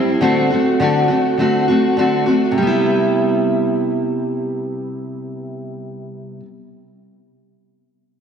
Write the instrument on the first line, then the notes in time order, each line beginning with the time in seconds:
steel-string acoustic guitar
Already playing: G3 C4 E4
0.21 D3 A3 C4 F#4
0.50 A3 C4 F#4
0.80 D3 A3 C4 F#4
1.08 A3 C4 F#4
1.38 D3 A3 C4 F#4
1.68 A3 C4 F#4
1.97 D3 A3 C4 F#4
2.26 A3 C4 F#4
2.52 C3
2.58 G3
2.62 B3
2.67 E4